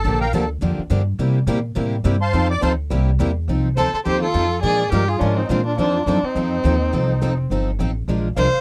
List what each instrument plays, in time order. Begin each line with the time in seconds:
Already playing: accordion A4 A5
0.04 upright bass A#1, steel-string acoustic guitar D3 F3 A#3 D4 G4
0.20 accordion A#4 F5 G5 A#5
0.33 upright bass D2, steel-string acoustic guitar D3 F3 A#3 D4 G4, accordion A4 A5
0.61 upright bass F2, steel-string acoustic guitar D3 F3 A#3 D4 G4
0.78 muted upright bass stroke
0.90 upright bass G2, steel-string acoustic guitar D3 F3 A#3 D4 G4
1.19 upright bass C3, steel-string acoustic guitar C3 G3 A#3 E4 G4
1.47 upright bass A#2, steel-string acoustic guitar C3 G3 A#3 E4 G4
1.75 upright bass A2, steel-string acoustic guitar C3 G3 A#3 E4 G4
2.05 upright bass G2, steel-string acoustic guitar C3 G3 A#3 E4 G4
2.21 accordion C5 F5 A5 C6
2.33 upright bass F2, steel-string acoustic guitar F3 C4 D#4 A4
2.50 accordion D5 D6
2.62 upright bass D2, steel-string acoustic guitar F3 C4 D#4 A4, accordion C5 F5 A5 C6
2.90 upright bass C2, steel-string acoustic guitar C3 G3 A#3 E4 G4
3.19 upright bass E2, steel-string acoustic guitar C3 G3 A#3 E4 G4
3.48 upright bass C2, steel-string acoustic guitar F3 C4 D#4 A4
3.76 upright bass D2, steel-string acoustic guitar F3 C4 D#4 A4, violin A4, accordion C5
3.92 violin A4, accordion C5, muted upright bass stroke
4.04 upright bass D#2, steel-string acoustic guitar F3 C4 D#4 A4, violin G4, accordion C5
4.21 violin F4, accordion A4
4.34 upright bass F2, steel-string acoustic guitar F3 C4 D#4 A4
4.62 upright bass A#2, steel-string acoustic guitar F3 G#3 D4 F4 A#4, violin G#4, accordion D5
4.90 upright bass G2, steel-string acoustic guitar F3 G#3 D4 F4 A#4, violin G4, accordion A#4
5.07 violin F4, accordion G#4
5.18 upright bass G#2, steel-string acoustic guitar F3 G#3 D4 F4 A#4, violin C#4 D4, accordion D#4 F4
5.36 violin C4, accordion D#4
5.47 upright bass A#2, steel-string acoustic guitar F3 G#3 D4 F4, violin C4, accordion F4
5.51 steel-string acoustic guitar A#4
5.63 violin D4, accordion F4
5.75 upright bass F2, steel-string acoustic guitar F3 C4, violin D4, accordion F4
5.79 steel-string acoustic guitar D#4 A4
6.06 upright bass F#2, steel-string acoustic guitar F3 C4 D#4 A4, violin D4, accordion F4
6.23 violin C4, accordion D#4, muted upright bass stroke
6.35 upright bass F2, steel-string acoustic guitar F3 C4 D#4 A4
6.64 upright bass D#2, steel-string acoustic guitar F3 C4 D#4 A4
6.93 upright bass C2, steel-string acoustic guitar F3 C4 D#4 A4
7.21 upright bass F1, steel-string acoustic guitar F3 C4 D#4 A4
7.50 upright bass G1, steel-string acoustic guitar F3 C4 D#4 A4
7.79 upright bass A1, steel-string acoustic guitar F3 C4 D#4 A4
8.08 upright bass A#1, steel-string acoustic guitar F3 G#3 D4 F4 A#4
8.36 upright bass C2, steel-string acoustic guitar F3 G#3 D4 F4 A#4, violin C5, accordion F5
8.53 muted upright bass stroke